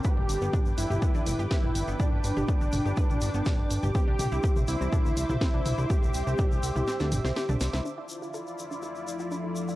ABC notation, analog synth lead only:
X:1
M:4/4
L:1/8
Q:1/4=123
K:Dm
V:1 name="Analog synth lead"
G3 E3 E2 | D8 | G3 E3 E2 | G8 |
z8 |]